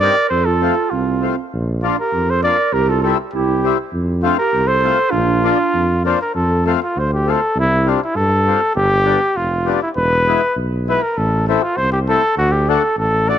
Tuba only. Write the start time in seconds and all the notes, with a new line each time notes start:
0.31 F2
0.92 C2
1.53 A#1
2.13 F2
2.73 C2
3.34 C2
3.93 F2
4.53 C2
5.13 A#1
5.74 F2
6.36 F2
6.96 D2
7.56 C2
8.16 G2
8.76 G1
9.36 F1
9.96 E1
10.56 B1
11.17 A1
11.78 C2
12.37 D2
12.97 A1